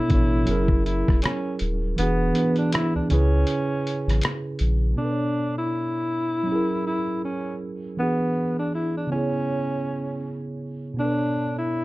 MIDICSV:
0, 0, Header, 1, 5, 480
1, 0, Start_track
1, 0, Tempo, 750000
1, 1267, Time_signature, 4, 2, 24, 8
1, 7581, End_track
2, 0, Start_track
2, 0, Title_t, "Tenor saxophone"
2, 0, Program_c, 0, 66
2, 0, Note_on_c, 0, 64, 84
2, 525, Note_off_c, 0, 64, 0
2, 547, Note_on_c, 0, 64, 70
2, 763, Note_off_c, 0, 64, 0
2, 786, Note_on_c, 0, 61, 72
2, 1002, Note_off_c, 0, 61, 0
2, 1274, Note_on_c, 0, 59, 81
2, 1629, Note_off_c, 0, 59, 0
2, 1651, Note_on_c, 0, 62, 65
2, 1738, Note_off_c, 0, 62, 0
2, 1752, Note_on_c, 0, 64, 81
2, 1877, Note_off_c, 0, 64, 0
2, 1892, Note_on_c, 0, 62, 65
2, 1979, Note_off_c, 0, 62, 0
2, 1988, Note_on_c, 0, 61, 77
2, 2823, Note_off_c, 0, 61, 0
2, 3187, Note_on_c, 0, 62, 74
2, 3571, Note_on_c, 0, 64, 71
2, 3581, Note_off_c, 0, 62, 0
2, 4363, Note_off_c, 0, 64, 0
2, 4393, Note_on_c, 0, 64, 64
2, 4607, Note_off_c, 0, 64, 0
2, 4637, Note_on_c, 0, 61, 66
2, 4848, Note_off_c, 0, 61, 0
2, 5116, Note_on_c, 0, 59, 79
2, 5470, Note_off_c, 0, 59, 0
2, 5498, Note_on_c, 0, 62, 72
2, 5582, Note_off_c, 0, 62, 0
2, 5599, Note_on_c, 0, 64, 64
2, 5721, Note_off_c, 0, 64, 0
2, 5740, Note_on_c, 0, 62, 63
2, 5824, Note_off_c, 0, 62, 0
2, 5835, Note_on_c, 0, 61, 76
2, 6667, Note_off_c, 0, 61, 0
2, 7038, Note_on_c, 0, 62, 81
2, 7413, Note_on_c, 0, 64, 73
2, 7423, Note_off_c, 0, 62, 0
2, 7581, Note_off_c, 0, 64, 0
2, 7581, End_track
3, 0, Start_track
3, 0, Title_t, "Tine electric piano"
3, 0, Program_c, 1, 4
3, 0, Control_c, 1, 64, 127
3, 0, Note_on_c, 1, 47, 71
3, 0, Note_on_c, 1, 59, 64
3, 0, Note_on_c, 1, 62, 67
3, 0, Note_on_c, 1, 69, 67
3, 0, Note_on_c, 1, 73, 74
3, 55, Note_off_c, 1, 47, 0
3, 55, Note_on_c, 1, 47, 74
3, 65, Note_off_c, 1, 59, 0
3, 65, Note_on_c, 1, 59, 66
3, 74, Note_off_c, 1, 62, 0
3, 74, Note_on_c, 1, 62, 72
3, 84, Note_off_c, 1, 69, 0
3, 84, Note_on_c, 1, 69, 66
3, 92, Note_off_c, 1, 73, 0
3, 92, Note_on_c, 1, 73, 82
3, 289, Note_on_c, 1, 54, 83
3, 298, Note_on_c, 1, 61, 78
3, 301, Note_off_c, 1, 47, 0
3, 306, Note_off_c, 1, 59, 0
3, 308, Note_on_c, 1, 64, 79
3, 310, Note_off_c, 1, 62, 0
3, 315, Note_off_c, 1, 69, 0
3, 316, Control_c, 1, 64, 0
3, 316, Note_on_c, 1, 68, 76
3, 319, Note_off_c, 1, 73, 0
3, 325, Note_on_c, 1, 70, 101
3, 411, Control_c, 1, 64, 127
3, 1075, Note_off_c, 1, 54, 0
3, 1079, Note_off_c, 1, 61, 0
3, 1084, Note_off_c, 1, 64, 0
3, 1088, Note_off_c, 1, 68, 0
3, 1092, Note_off_c, 1, 70, 0
3, 1256, Note_on_c, 1, 52, 69
3, 1268, Note_on_c, 1, 59, 64
3, 1275, Note_on_c, 1, 62, 64
3, 1276, Control_c, 1, 64, 0
3, 1284, Note_on_c, 1, 66, 70
3, 1294, Note_on_c, 1, 68, 82
3, 1387, Control_c, 1, 64, 127
3, 1424, Note_off_c, 1, 52, 0
3, 1430, Note_off_c, 1, 59, 0
3, 1433, Note_off_c, 1, 62, 0
3, 1438, Note_off_c, 1, 66, 0
3, 1443, Note_off_c, 1, 68, 0
3, 1492, Note_on_c, 1, 52, 67
3, 1501, Note_on_c, 1, 59, 64
3, 1511, Note_on_c, 1, 62, 68
3, 1521, Note_on_c, 1, 66, 66
3, 1531, Note_on_c, 1, 71, 83
3, 1800, Note_off_c, 1, 52, 0
3, 1805, Note_off_c, 1, 59, 0
3, 1810, Note_off_c, 1, 62, 0
3, 1815, Note_off_c, 1, 66, 0
3, 1820, Note_off_c, 1, 71, 0
3, 1975, Note_on_c, 1, 49, 75
3, 1984, Note_on_c, 1, 61, 70
3, 1992, Note_on_c, 1, 64, 72
3, 1995, Control_c, 1, 64, 0
3, 2002, Note_on_c, 1, 68, 78
3, 2010, Note_on_c, 1, 71, 77
3, 2118, Control_c, 1, 64, 127
3, 2757, Note_off_c, 1, 49, 0
3, 2762, Note_off_c, 1, 61, 0
3, 2766, Note_off_c, 1, 64, 0
3, 2771, Note_off_c, 1, 68, 0
3, 2775, Note_off_c, 1, 71, 0
3, 3158, Note_on_c, 1, 47, 58
3, 3175, Note_on_c, 1, 59, 52
3, 3193, Note_on_c, 1, 62, 47
3, 3195, Control_c, 1, 64, 0
3, 3211, Note_on_c, 1, 69, 51
3, 3231, Note_on_c, 1, 71, 52
3, 3258, Note_off_c, 1, 71, 0
3, 3273, Note_on_c, 1, 73, 59
3, 3322, Control_c, 1, 64, 127
3, 4113, Note_off_c, 1, 47, 0
3, 4116, Note_on_c, 1, 54, 65
3, 4121, Note_off_c, 1, 59, 0
3, 4131, Note_off_c, 1, 62, 0
3, 4136, Note_on_c, 1, 61, 58
3, 4140, Note_off_c, 1, 69, 0
3, 4154, Note_on_c, 1, 64, 57
3, 4156, Control_c, 1, 64, 0
3, 4172, Note_off_c, 1, 73, 0
3, 4172, Note_on_c, 1, 68, 62
3, 4192, Note_on_c, 1, 70, 66
3, 4284, Control_c, 1, 64, 127
3, 5072, Note_off_c, 1, 54, 0
3, 5082, Note_off_c, 1, 61, 0
3, 5091, Note_off_c, 1, 64, 0
3, 5100, Note_off_c, 1, 68, 0
3, 5100, Note_on_c, 1, 52, 60
3, 5111, Note_off_c, 1, 70, 0
3, 5111, Note_on_c, 1, 59, 48
3, 5115, Control_c, 1, 64, 0
3, 5119, Note_on_c, 1, 62, 52
3, 5128, Note_on_c, 1, 66, 51
3, 5137, Note_on_c, 1, 68, 65
3, 5220, Control_c, 1, 64, 127
3, 5803, Note_on_c, 1, 49, 60
3, 5813, Note_off_c, 1, 59, 0
3, 5821, Note_on_c, 1, 59, 61
3, 5823, Note_off_c, 1, 52, 0
3, 5833, Note_off_c, 1, 62, 0
3, 5836, Control_c, 1, 64, 0
3, 5837, Note_off_c, 1, 66, 0
3, 5839, Note_on_c, 1, 64, 52
3, 5842, Note_off_c, 1, 68, 0
3, 5858, Note_on_c, 1, 68, 55
3, 5877, Note_on_c, 1, 73, 73
3, 5957, Control_c, 1, 64, 127
3, 6991, Note_off_c, 1, 49, 0
3, 6999, Note_on_c, 1, 47, 60
3, 7000, Note_off_c, 1, 59, 0
3, 7009, Note_off_c, 1, 64, 0
3, 7018, Note_on_c, 1, 59, 57
3, 7019, Note_off_c, 1, 68, 0
3, 7029, Note_off_c, 1, 73, 0
3, 7036, Control_c, 1, 64, 0
3, 7038, Note_on_c, 1, 62, 57
3, 7054, Note_on_c, 1, 69, 52
3, 7073, Note_on_c, 1, 71, 50
3, 7099, Note_off_c, 1, 71, 0
3, 7116, Note_on_c, 1, 73, 64
3, 7151, Control_c, 1, 64, 127
3, 7581, Note_off_c, 1, 47, 0
3, 7581, Note_off_c, 1, 59, 0
3, 7581, Note_off_c, 1, 62, 0
3, 7581, Note_off_c, 1, 69, 0
3, 7581, Note_off_c, 1, 73, 0
3, 7581, End_track
4, 0, Start_track
4, 0, Title_t, "Sub bass"
4, 0, Program_c, 2, 38
4, 67, Note_on_c, 2, 33, 85
4, 285, Note_off_c, 2, 33, 0
4, 307, Note_on_c, 2, 30, 96
4, 663, Note_off_c, 2, 30, 0
4, 695, Note_on_c, 2, 28, 70
4, 782, Note_off_c, 2, 28, 0
4, 1029, Note_on_c, 2, 27, 100
4, 1246, Note_off_c, 2, 27, 0
4, 1270, Note_on_c, 2, 28, 109
4, 1486, Note_off_c, 2, 28, 0
4, 1889, Note_on_c, 2, 37, 41
4, 1928, Note_off_c, 2, 37, 0
4, 1990, Note_on_c, 2, 37, 90
4, 2206, Note_off_c, 2, 37, 0
4, 2607, Note_on_c, 2, 33, 84
4, 2697, Note_off_c, 2, 33, 0
4, 2946, Note_on_c, 2, 34, 96
4, 3164, Note_off_c, 2, 34, 0
4, 7581, End_track
5, 0, Start_track
5, 0, Title_t, "Drums"
5, 62, Note_on_c, 9, 42, 52
5, 65, Note_on_c, 9, 36, 84
5, 126, Note_off_c, 9, 42, 0
5, 129, Note_off_c, 9, 36, 0
5, 299, Note_on_c, 9, 42, 74
5, 363, Note_off_c, 9, 42, 0
5, 437, Note_on_c, 9, 36, 91
5, 501, Note_off_c, 9, 36, 0
5, 551, Note_on_c, 9, 42, 54
5, 615, Note_off_c, 9, 42, 0
5, 693, Note_on_c, 9, 36, 91
5, 705, Note_on_c, 9, 37, 37
5, 757, Note_off_c, 9, 36, 0
5, 769, Note_off_c, 9, 37, 0
5, 781, Note_on_c, 9, 42, 66
5, 792, Note_on_c, 9, 26, 74
5, 803, Note_on_c, 9, 37, 104
5, 845, Note_off_c, 9, 42, 0
5, 856, Note_off_c, 9, 26, 0
5, 867, Note_off_c, 9, 37, 0
5, 1019, Note_on_c, 9, 42, 62
5, 1083, Note_off_c, 9, 42, 0
5, 1267, Note_on_c, 9, 42, 82
5, 1331, Note_off_c, 9, 42, 0
5, 1504, Note_on_c, 9, 42, 60
5, 1568, Note_off_c, 9, 42, 0
5, 1637, Note_on_c, 9, 42, 38
5, 1701, Note_off_c, 9, 42, 0
5, 1744, Note_on_c, 9, 42, 91
5, 1745, Note_on_c, 9, 26, 56
5, 1760, Note_on_c, 9, 37, 113
5, 1808, Note_off_c, 9, 42, 0
5, 1809, Note_off_c, 9, 26, 0
5, 1824, Note_off_c, 9, 37, 0
5, 1984, Note_on_c, 9, 42, 60
5, 2048, Note_off_c, 9, 42, 0
5, 2219, Note_on_c, 9, 42, 67
5, 2283, Note_off_c, 9, 42, 0
5, 2476, Note_on_c, 9, 42, 59
5, 2540, Note_off_c, 9, 42, 0
5, 2620, Note_on_c, 9, 42, 48
5, 2627, Note_on_c, 9, 37, 35
5, 2684, Note_off_c, 9, 42, 0
5, 2691, Note_off_c, 9, 37, 0
5, 2697, Note_on_c, 9, 42, 65
5, 2710, Note_on_c, 9, 26, 71
5, 2719, Note_on_c, 9, 37, 102
5, 2761, Note_off_c, 9, 42, 0
5, 2774, Note_off_c, 9, 26, 0
5, 2783, Note_off_c, 9, 37, 0
5, 2937, Note_on_c, 9, 42, 59
5, 3001, Note_off_c, 9, 42, 0
5, 7581, End_track
0, 0, End_of_file